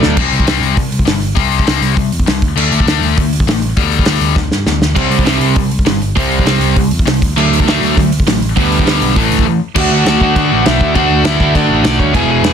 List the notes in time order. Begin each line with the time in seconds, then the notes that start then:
Already playing: D3 F#3 A3 D4
0.02 D2, snare
0.17 C2 C3 G3 C4, kick, crash
0.32 C2, open hi-hat
0.40 kick
0.46 C2 C3 G3 C4, snare, open hi-hat
0.61 C2, open hi-hat
0.75 C2 C3 G3, kick, open hi-hat
0.92 open hi-hat
0.99 kick
1.05 G1 C3 G3, snare, open hi-hat
1.22 open hi-hat
1.35 C2 C3 G3 C4, kick, open hi-hat
1.52 open hi-hat
1.59 kick
1.65 C2 C3 G3 C4, snare, open hi-hat
1.81 C2, open hi-hat
1.96 C2 C3 G3, kick, open hi-hat
2.12 E2, open hi-hat
2.20 kick
2.26 C2 C3 G3, snare, open hi-hat
2.42 D2, kick, open hi-hat
2.56 D2 D3 A3 D4, crash
2.72 D2, open hi-hat
2.80 kick
2.86 D2 D3 A3 D4, snare, open hi-hat
3.02 D2, open hi-hat
3.17 D2 D3 A3, kick, open hi-hat
3.33 open hi-hat
3.40 kick
3.46 A1 D3 A3, snare, open hi-hat
3.62 open hi-hat
3.77 D2 G2 D3 G3, kick, open hi-hat
3.92 open hi-hat
3.99 kick
4.05 D2 G2 D3 G3, snare, open hi-hat
4.21 D2, open hi-hat
4.36 D2 G2 D3, kick, snare
4.52 G2, snare
4.66 D2 G2 D3, snare
4.81 D2, snare
4.95 C2 C3 G3 C4, kick, splash, crash
5.11 C2, open hi-hat
5.19 kick
5.25 C2 C3 G3 C4, snare, open hi-hat
5.40 C2, open hi-hat
5.56 C2 C3 G3, kick, open hi-hat
5.71 open hi-hat
5.79 kick
5.85 G1 C3 G3, snare, open hi-hat
6.02 open hi-hat
6.16 C2 C3 G3 C4, kick, open hi-hat
6.32 open hi-hat
6.39 kick
6.46 C2 C3 G3 C4, snare, open hi-hat
6.61 C2, open hi-hat
6.76 C2 C3 G3, kick, open hi-hat
6.91 E2, open hi-hat
6.99 kick
7.05 C2 C3 G3, snare, open hi-hat
7.22 D2, kick, open hi-hat
7.36 D2 D3 F#3 A3 D4, crash
7.51 D2, open hi-hat
7.60 kick
7.65 D2 D3 F#3 A3 D4, snare, open hi-hat
7.81 D2, open hi-hat
7.97 D2 D3 F#3 A3, kick, open hi-hat
8.12 open hi-hat
8.20 kick
8.26 A1 D3 F#3 A3, snare, open hi-hat
8.42 open hi-hat
8.56 D2 G2 D3 G3 B3, kick, open hi-hat
8.72 open hi-hat
8.79 kick
8.86 D2 G2 D3 G3 B3, snare, open hi-hat
9.01 B1, open hi-hat
9.15 A1 A2 E3 A3, kick, open hi-hat
9.30 D2, open hi-hat
9.39 kick
9.46 A2 E3
9.75 D2 D3 A3 D4 F#4, kick, crash
9.80 F#5
9.91 D2
10.05 D2 F#4 F#5, snare, crash
10.20 D3 A3 D4 F#4, kick
10.36 D3, kick, crash
10.51 A1
10.66 B1 E4 E5, snare, crash
10.81 D2, kick
10.94 D2 D3 A3 D4 F#4 F#5, kick, crash
11.10 D2
11.24 D2 E4 E5, snare, crash
11.40 D3 A3 D4 F#4, kick
11.55 D3 D4 D5, kick, crash
11.69 A1
11.83 B1 D5 D6, snare, crash
11.99 D2 C#5 C#6, kick
12.14 E1 E2 B2 E3 G#3 B3 E4 G#4 G#5, kick, crash
12.27 E1 G#4
12.31 G#5
12.43 E1, snare, crash